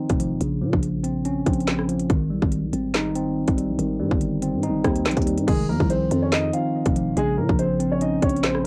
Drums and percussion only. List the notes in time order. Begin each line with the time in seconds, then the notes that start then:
0.10 kick, closed hi-hat
0.20 closed hi-hat
0.41 closed hi-hat
0.73 kick
0.83 closed hi-hat
1.04 closed hi-hat
1.25 closed hi-hat
1.46 kick, closed hi-hat
1.53 closed hi-hat
1.60 closed hi-hat
1.67 snare, clap, closed hi-hat
1.79 cross-stick
1.89 closed hi-hat
1.99 closed hi-hat
2.10 kick, closed hi-hat
2.42 kick
2.52 closed hi-hat
2.73 closed hi-hat
2.94 snare, clap, closed hi-hat
3.15 closed hi-hat
3.48 kick, closed hi-hat
3.58 closed hi-hat
3.79 closed hi-hat
4.11 kick
4.21 closed hi-hat
4.42 closed hi-hat
4.63 closed hi-hat
4.84 kick, cross-stick, closed hi-hat
4.96 closed hi-hat
5.06 snare, clap, closed hi-hat
5.11 closed hi-hat
5.17 kick, closed hi-hat
5.22 closed hi-hat
5.27 closed hi-hat
5.38 closed hi-hat
5.48 kick, closed hi-hat, crash
5.80 kick
5.90 closed hi-hat
6.11 closed hi-hat
6.32 snare, clap, closed hi-hat
6.54 closed hi-hat
6.86 kick, closed hi-hat
6.96 closed hi-hat
7.17 closed hi-hat
7.49 kick
7.59 closed hi-hat
7.80 closed hi-hat
8.01 closed hi-hat
8.22 kick, closed hi-hat
8.29 closed hi-hat
8.37 closed hi-hat
8.43 snare, clap, closed hi-hat
8.55 cross-stick